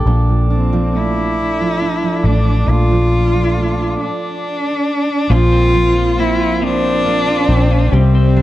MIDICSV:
0, 0, Header, 1, 6, 480
1, 0, Start_track
1, 0, Tempo, 873362
1, 31, Time_signature, 6, 3, 24, 8
1, 4628, End_track
2, 0, Start_track
2, 0, Title_t, "Glass harmonica"
2, 0, Program_c, 0, 92
2, 0, Note_on_c, 0, 69, 51
2, 0, Note_on_c, 0, 81, 43
2, 0, Note_on_c, 0, 86, 53
2, 32, Note_on_c, 0, 74, 48
2, 2172, Note_off_c, 0, 74, 0
2, 2175, Note_off_c, 0, 69, 0
2, 2175, Note_off_c, 0, 81, 0
2, 2175, Note_off_c, 0, 86, 0
2, 2913, Note_on_c, 0, 70, 58
2, 2913, Note_on_c, 0, 84, 69
2, 2916, Note_on_c, 0, 72, 55
2, 4338, Note_off_c, 0, 70, 0
2, 4338, Note_off_c, 0, 84, 0
2, 4353, Note_on_c, 0, 74, 57
2, 4354, Note_on_c, 0, 84, 69
2, 4355, Note_on_c, 0, 67, 64
2, 4628, Note_off_c, 0, 67, 0
2, 4628, Note_off_c, 0, 72, 0
2, 4628, Note_off_c, 0, 74, 0
2, 4628, Note_off_c, 0, 84, 0
2, 4628, End_track
3, 0, Start_track
3, 0, Title_t, "Cello"
3, 0, Program_c, 1, 42
3, 287, Note_on_c, 1, 60, 60
3, 528, Note_on_c, 1, 64, 75
3, 536, Note_off_c, 1, 60, 0
3, 1237, Note_on_c, 1, 62, 71
3, 1245, Note_off_c, 1, 64, 0
3, 1480, Note_on_c, 1, 65, 81
3, 1489, Note_off_c, 1, 62, 0
3, 2193, Note_off_c, 1, 65, 0
3, 2196, Note_on_c, 1, 62, 81
3, 2923, Note_on_c, 1, 65, 102
3, 2931, Note_off_c, 1, 62, 0
3, 3402, Note_on_c, 1, 64, 93
3, 3410, Note_off_c, 1, 65, 0
3, 3645, Note_on_c, 1, 62, 101
3, 3653, Note_off_c, 1, 64, 0
3, 4361, Note_on_c, 1, 60, 92
3, 4369, Note_off_c, 1, 62, 0
3, 4628, Note_off_c, 1, 60, 0
3, 4628, End_track
4, 0, Start_track
4, 0, Title_t, "Clean electric guitar"
4, 0, Program_c, 2, 27
4, 2914, Note_on_c, 2, 53, 75
4, 3035, Note_on_c, 2, 60, 54
4, 3153, Note_on_c, 2, 65, 68
4, 3266, Note_off_c, 2, 53, 0
4, 3273, Note_on_c, 2, 53, 62
4, 3393, Note_off_c, 2, 60, 0
4, 3395, Note_on_c, 2, 60, 55
4, 3511, Note_off_c, 2, 65, 0
4, 3517, Note_on_c, 2, 65, 59
4, 3630, Note_off_c, 2, 53, 0
4, 3636, Note_on_c, 2, 53, 78
4, 3756, Note_off_c, 2, 60, 0
4, 3758, Note_on_c, 2, 60, 54
4, 3870, Note_off_c, 2, 65, 0
4, 3876, Note_on_c, 2, 65, 56
4, 3991, Note_off_c, 2, 53, 0
4, 3998, Note_on_c, 2, 53, 60
4, 4115, Note_off_c, 2, 60, 0
4, 4117, Note_on_c, 2, 60, 55
4, 4230, Note_off_c, 2, 65, 0
4, 4237, Note_on_c, 2, 65, 64
4, 4355, Note_off_c, 2, 53, 0
4, 4357, Note_on_c, 2, 55, 75
4, 4403, Note_off_c, 2, 65, 0
4, 4476, Note_off_c, 2, 60, 0
4, 4478, Note_on_c, 2, 60, 55
4, 4600, Note_on_c, 2, 62, 62
4, 4628, Note_off_c, 2, 55, 0
4, 4628, Note_off_c, 2, 60, 0
4, 4628, Note_off_c, 2, 62, 0
4, 4628, End_track
5, 0, Start_track
5, 0, Title_t, "Steel-string acoustic guitar"
5, 0, Program_c, 3, 25
5, 0, Note_on_c, 3, 55, 49
5, 0, Note_on_c, 3, 58, 47
5, 0, Note_on_c, 3, 69, 59
5, 36, Note_on_c, 3, 46, 63
5, 39, Note_on_c, 3, 62, 53
5, 80, Note_off_c, 3, 55, 0
5, 159, Note_on_c, 3, 53, 42
5, 270, Note_off_c, 3, 62, 0
5, 276, Note_on_c, 3, 62, 50
5, 397, Note_off_c, 3, 53, 0
5, 399, Note_on_c, 3, 53, 57
5, 515, Note_off_c, 3, 58, 0
5, 518, Note_on_c, 3, 57, 45
5, 633, Note_off_c, 3, 62, 0
5, 639, Note_on_c, 3, 62, 51
5, 755, Note_off_c, 3, 46, 0
5, 756, Note_off_c, 3, 62, 0
5, 763, Note_on_c, 3, 62, 49
5, 879, Note_off_c, 3, 53, 0
5, 882, Note_on_c, 3, 53, 43
5, 991, Note_off_c, 3, 62, 0
5, 998, Note_on_c, 3, 62, 53
5, 1115, Note_off_c, 3, 53, 0
5, 1117, Note_on_c, 3, 53, 46
5, 1232, Note_off_c, 3, 57, 0
5, 1238, Note_on_c, 3, 57, 48
5, 1352, Note_off_c, 3, 62, 0
5, 1359, Note_on_c, 3, 62, 53
5, 1473, Note_off_c, 3, 62, 0
5, 1478, Note_on_c, 3, 46, 61
5, 1480, Note_on_c, 3, 62, 53
5, 1495, Note_off_c, 3, 69, 0
5, 1598, Note_off_c, 3, 53, 0
5, 1601, Note_on_c, 3, 53, 48
5, 1714, Note_off_c, 3, 62, 0
5, 1721, Note_on_c, 3, 62, 52
5, 1833, Note_off_c, 3, 53, 0
5, 1835, Note_on_c, 3, 53, 49
5, 1951, Note_off_c, 3, 57, 0
5, 1957, Note_on_c, 3, 57, 42
5, 2071, Note_off_c, 3, 62, 0
5, 2078, Note_on_c, 3, 62, 48
5, 2243, Note_off_c, 3, 57, 0
5, 2244, Note_off_c, 3, 46, 0
5, 2244, Note_off_c, 3, 62, 0
5, 2518, Note_off_c, 3, 53, 0
5, 2917, Note_on_c, 3, 46, 72
5, 3154, Note_on_c, 3, 53, 55
5, 3398, Note_on_c, 3, 58, 57
5, 3639, Note_on_c, 3, 60, 57
5, 3871, Note_off_c, 3, 58, 0
5, 3878, Note_on_c, 3, 58, 56
5, 4117, Note_off_c, 3, 60, 0
5, 4119, Note_on_c, 3, 60, 60
5, 4354, Note_off_c, 3, 46, 0
5, 4359, Note_on_c, 3, 48, 80
5, 4401, Note_off_c, 3, 53, 0
5, 4403, Note_off_c, 3, 58, 0
5, 4596, Note_on_c, 3, 55, 59
5, 4628, Note_off_c, 3, 48, 0
5, 4628, Note_off_c, 3, 55, 0
5, 4628, Note_off_c, 3, 60, 0
5, 4628, End_track
6, 0, Start_track
6, 0, Title_t, "Fingered electric bass"
6, 0, Program_c, 4, 33
6, 31, Note_on_c, 4, 34, 80
6, 1210, Note_off_c, 4, 34, 0
6, 1230, Note_on_c, 4, 33, 68
6, 1457, Note_off_c, 4, 33, 0
6, 1470, Note_on_c, 4, 34, 78
6, 2170, Note_off_c, 4, 34, 0
6, 2911, Note_on_c, 4, 34, 90
6, 4090, Note_off_c, 4, 34, 0
6, 4115, Note_on_c, 4, 34, 77
6, 4339, Note_off_c, 4, 34, 0
6, 4355, Note_on_c, 4, 36, 96
6, 4628, Note_off_c, 4, 36, 0
6, 4628, End_track
0, 0, End_of_file